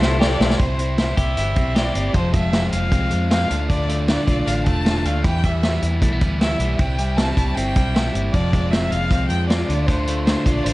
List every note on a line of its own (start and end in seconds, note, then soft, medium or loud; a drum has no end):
0.00 0.36 C2 medium
0.00 0.60 C3 medium
0.00 0.64 A3 medium
0.00 0.17 E4 medium
0.00 0.22 E4 medium
0.00 0.19 G4 medium
0.00 0.21 A4 medium
0.00 0.17 A4 medium
0.00 0.18 C5 medium
0.00 0.17 C5 medium
0.00 snare medium
0.04 0.21 G3 medium
0.20 0.40 E3 medium
0.20 0.41 G3 medium
0.20 0.36 E4 medium
0.20 0.41 E4 medium
0.20 0.63 G4 medium
0.20 0.36 A4 medium
0.20 0.36 C5 loud
0.20 0.60 D5 medium
0.20 snare medium
0.24 0.39 A4 medium
0.39 0.57 B1 medium
0.39 0.55 E4 loud
0.39 0.61 E4 medium
0.39 0.55 A4 loud
0.39 0.60 A4 medium
0.39 0.56 C5 loud
0.39 snare loud
0.44 0.60 G3 medium
0.50 snare medium
0.58 1.15 C2 loud
0.58 0.80 C3 medium
0.58 0.80 E3 medium
0.58 0.80 G3 medium
0.58 0.79 C4 medium
0.58 0.98 C5 medium
0.58 kick loud
0.58 closed hi-hat medium
0.62 0.77 E4 medium
0.78 0.98 G3 soft
0.78 0.98 C4 soft
0.78 0.98 E4 medium
0.78 closed hi-hat medium
0.97 1.17 E3 medium
0.97 1.18 G3 medium
0.97 1.18 C4 medium
0.97 1.16 E4 medium
0.97 1.19 C5 medium
0.97 snare loud
0.97 closed hi-hat medium
1.17 1.34 C2 medium
1.17 1.37 G3 soft
1.17 1.38 C4 soft
1.17 1.37 E4 soft
1.17 1.74 G4 medium
1.17 1.78 E5 medium
1.17 kick medium
1.17 closed hi-hat medium
1.37 1.53 G1 medium
1.37 1.57 C3 medium
1.37 1.57 E3 medium
1.37 1.57 G3 medium
1.37 1.56 C4 medium
1.37 1.55 E4 medium
1.37 closed hi-hat medium
1.56 1.90 B1 medium
1.56 1.74 G3 soft
1.56 1.75 C4 soft
1.56 1.76 E4 soft
1.56 kick medium
1.56 closed hi-hat medium
1.74 1.95 E3 soft
1.74 1.95 G3 medium
1.74 1.95 C4 medium
1.74 1.94 E4 medium
1.74 2.18 G4 medium
1.74 2.15 D5 medium
1.74 snare loud
1.74 closed hi-hat medium
1.95 2.12 G1 medium
1.95 2.15 G3 soft
1.95 2.15 C4 soft
1.95 2.15 E4 soft
1.95 closed hi-hat medium
2.14 2.70 F1 medium
2.14 2.34 F2 medium
2.14 2.34 C3 medium
2.14 2.34 F3 medium
2.14 2.34 G#3 medium
2.14 2.34 C4 medium
2.14 2.33 F4 medium
2.14 2.33 C5 medium
2.14 kick medium
2.14 closed hi-hat medium
2.33 2.53 F3 soft
2.33 2.54 G#3 soft
2.33 2.54 C4 soft
2.33 2.53 F4 soft
2.33 2.70 E5 medium
2.33 kick medium
2.33 closed hi-hat medium
2.53 2.73 F3 soft
2.53 2.74 G#3 medium
2.53 2.73 C4 medium
2.53 2.72 F4 medium
2.53 snare medium
2.53 closed hi-hat medium
2.72 2.89 F1 medium
2.72 2.92 G#3 soft
2.72 2.93 C4 soft
2.72 2.93 F4 soft
2.72 3.26 F5 medium
2.72 closed hi-hat medium
2.76 2.92 F3 soft
2.92 3.08 C2 medium
2.92 3.11 F2 medium
2.92 3.12 C3 medium
2.92 3.12 F3 medium
2.92 3.12 G#3 medium
2.92 3.11 C4 medium
2.92 3.10 F4 medium
2.92 kick medium
2.92 closed hi-hat medium
3.11 3.45 F2 medium
3.11 3.29 F3 soft
3.11 3.31 G#3 soft
3.11 3.31 C4 soft
3.11 3.31 F4 soft
3.11 closed hi-hat medium
3.30 3.50 F3 medium
3.30 3.51 G#3 medium
3.30 3.50 C4 medium
3.30 3.48 F4 medium
3.30 3.66 F5 medium
3.30 snare medium
3.30 closed hi-hat medium
3.49 4.16 D2 medium
3.49 3.69 D3 medium
3.49 3.69 A3 soft
3.49 3.70 D4 medium
3.49 3.69 F4 medium
3.49 closed hi-hat medium
3.70 3.89 D3 medium
3.70 3.89 A3 medium
3.70 3.88 D4 medium
3.70 3.87 F4 medium
3.70 4.06 D5 medium
3.70 kick medium
3.70 closed hi-hat medium
3.88 4.07 A3 soft
3.88 4.08 D4 soft
3.88 4.08 F4 medium
3.88 closed hi-hat medium
4.07 4.27 D3 soft
4.07 4.28 A3 medium
4.07 4.27 D4 medium
4.07 4.25 F4 medium
4.07 4.48 D5 medium
4.07 snare medium
4.07 closed hi-hat medium
4.26 4.44 B1 medium
4.26 4.45 A3 soft
4.26 4.46 D4 soft
4.26 4.46 F4 soft
4.26 kick medium
4.26 closed hi-hat medium
4.46 4.63 A1 medium
4.46 4.66 D3 medium
4.46 4.66 A3 medium
4.46 4.66 D4 medium
4.46 4.65 F4 medium
4.46 4.65 F5 medium
4.46 closed hi-hat medium
4.66 5.05 E1 medium
4.66 4.85 A3 soft
4.66 4.86 D4 soft
4.66 4.85 F4 soft
4.66 5.07 A5 medium
4.66 kick medium
4.66 closed hi-hat medium
4.85 5.05 D3 medium
4.85 5.05 A3 medium
4.85 5.06 D4 medium
4.85 5.05 F4 medium
4.85 snare loud
4.85 closed hi-hat medium
5.05 5.21 D2 medium
5.05 5.24 A3 soft
5.05 5.25 D4 soft
5.05 5.25 F4 medium
5.05 5.24 F5 medium
5.05 closed hi-hat medium
5.24 5.43 E2 medium
5.24 5.79 E2 medium
5.24 5.44 B2 medium
5.24 5.44 E3 medium
5.24 5.44 G3 medium
5.24 5.43 B3 medium
5.24 5.42 E4 medium
5.24 5.46 G5 loud
5.24 kick medium
5.24 closed hi-hat medium
5.43 5.62 E3 soft
5.43 5.63 G3 soft
5.43 5.63 B3 soft
5.43 5.63 E4 soft
5.43 5.83 E5 medium
5.43 kick medium
5.43 closed hi-hat medium
5.63 5.82 E3 medium
5.63 5.83 G3 medium
5.63 5.73 A3 soft
5.63 5.83 B3 medium
5.63 5.81 E4 medium
5.63 snare medium
5.63 closed hi-hat medium
5.73 6.02 B3 soft
5.82 5.99 E2 medium
5.82 6.01 E3 soft
5.82 6.01 G3 soft
5.82 6.02 B3 soft
5.82 6.02 E4 soft
5.82 closed hi-hat medium
6.01 6.18 B1 medium
6.01 6.21 E2 medium
6.01 6.21 B2 medium
6.01 6.21 E3 medium
6.01 6.20 G3 medium
6.01 6.12 A3 medium
6.01 6.20 B3 medium
6.01 6.18 E4 medium
6.01 kick medium
6.01 closed hi-hat medium
6.12 6.83 B3 soft
6.20 6.54 D2 medium
6.20 6.38 E3 soft
6.20 6.40 G3 soft
6.20 6.40 B3 soft
6.20 6.40 E4 medium
6.20 kick medium
6.20 closed hi-hat medium
6.40 6.59 E3 soft
6.40 6.60 G3 medium
6.40 6.59 B3 soft
6.40 6.58 E4 medium
6.40 6.76 E5 medium
6.40 snare medium
6.40 closed hi-hat medium
6.59 6.76 B1 medium
6.59 6.78 E3 soft
6.59 6.79 G3 soft
6.59 6.79 B3 soft
6.59 6.79 E4 medium
6.59 closed hi-hat medium
6.78 7.34 C2 loud
6.78 6.98 C3 medium
6.78 6.98 E3 medium
6.78 6.99 G3 medium
6.78 6.99 C4 medium
6.78 6.97 E4 medium
6.78 7.19 G5 medium
6.78 kick medium
6.78 closed hi-hat medium
6.98 7.17 G3 soft
6.98 7.18 C4 soft
6.98 7.18 E4 soft
6.98 closed hi-hat medium
7.17 7.37 E3 soft
7.17 7.37 G3 medium
7.17 7.38 C4 medium
7.17 7.36 E4 medium
7.17 7.56 A5 medium
7.17 snare loud
7.17 closed hi-hat medium
7.37 7.53 C2 medium
7.37 7.56 G3 soft
7.37 7.56 C4 soft
7.37 7.56 E4 soft
7.37 kick medium
7.37 closed hi-hat medium
7.55 7.73 G1 medium
7.55 7.75 C3 medium
7.55 7.76 E3 medium
7.55 7.76 G3 medium
7.55 7.75 C4 medium
7.55 7.74 E4 medium
7.55 8.13 G5 medium
7.55 closed hi-hat medium
7.76 8.09 B1 medium
7.76 7.94 G3 soft
7.76 7.95 C4 soft
7.76 7.95 E4 soft
7.76 kick medium
7.76 closed hi-hat medium
7.95 8.14 E3 medium
7.95 8.14 G3 medium
7.95 8.13 C4 medium
7.95 8.12 E4 medium
7.95 snare loud
7.95 closed hi-hat medium
8.13 8.31 G1 medium
8.13 8.34 G3 soft
8.13 8.33 C4 medium
8.13 8.33 E4 medium
8.13 closed hi-hat medium
8.32 8.89 F1 medium
8.32 8.52 F2 medium
8.32 8.53 C3 medium
8.32 8.53 F3 medium
8.32 8.53 G#3 medium
8.32 8.52 C4 medium
8.32 8.51 F4 medium
8.32 8.72 D5 medium
8.32 kick medium
8.32 closed hi-hat medium
8.52 8.70 F3 soft
8.52 8.72 G#3 soft
8.52 8.72 C4 soft
8.52 8.72 F4 soft
8.52 kick medium
8.52 closed hi-hat medium
8.71 8.91 F3 medium
8.71 8.92 G#3 medium
8.71 8.91 C4 medium
8.71 8.90 F4 medium
8.71 8.92 E5 medium
8.71 snare loud
8.71 closed hi-hat medium
8.90 9.08 F1 medium
8.90 9.10 F3 soft
8.90 9.10 G#3 soft
8.90 9.11 C4 soft
8.90 9.11 F4 soft
8.90 9.27 F5 loud
8.90 closed hi-hat medium
9.10 9.27 C2 medium
9.10 9.30 F2 medium
9.10 9.30 C3 medium
9.10 9.30 F3 medium
9.10 9.30 G#3 medium
9.10 9.28 C4 medium
9.10 9.28 F4 medium
9.10 kick medium
9.10 closed hi-hat medium
9.28 9.63 F2 medium
9.28 9.48 G#3 soft
9.28 9.49 C4 soft
9.28 9.49 F4 medium
9.28 9.47 G5 medium
9.28 closed hi-hat medium
9.32 9.47 F3 soft
9.48 9.68 F3 soft
9.48 9.69 G#3 soft
9.48 9.69 C4 medium
9.48 9.66 F4 medium
9.48 9.88 D5 medium
9.48 snare loud
9.48 closed hi-hat medium
9.67 10.34 D2 medium
9.67 9.88 D3 medium
9.67 9.88 A3 soft
9.67 9.88 D4 medium
9.67 9.87 F4 soft
9.67 closed hi-hat medium
9.86 10.07 D3 medium
9.86 10.08 A3 medium
9.86 10.07 D4 medium
9.86 10.24 C5 medium
9.86 kick medium
9.86 closed hi-hat medium
9.90 10.06 F4 medium
10.07 10.26 A3 soft
10.07 10.27 D4 soft
10.07 10.26 F4 soft
10.07 closed hi-hat medium
10.24 10.46 D3 medium
10.24 10.46 A3 medium
10.24 10.47 D4 medium
10.24 10.52 C5 medium
10.24 snare loud
10.24 closed hi-hat medium
10.29 10.45 F4 medium
10.46 10.62 B1 medium
10.46 10.65 A3 soft
10.46 10.66 D4 soft
10.46 10.65 F4 soft
10.46 kick medium
10.46 closed hi-hat medium
10.53 10.66 D5 medium
10.64 10.73 A1 medium
10.64 10.73 D3 medium
10.64 10.73 A3 medium
10.64 10.73 D4 medium
10.64 10.73 F4 medium
10.64 10.73 C5 medium
10.64 closed hi-hat medium